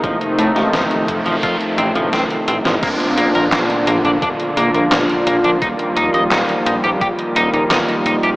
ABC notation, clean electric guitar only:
X:1
M:4/4
L:1/16
Q:1/4=86
K:Bb
V:1 name="Clean electric guitar"
F, z A, F, F, z F, F, F z C F, C z C F, | B, z B, B B, z B, D D z B, B, B, z B, D | E z E e E z E G G z E E E z E G |]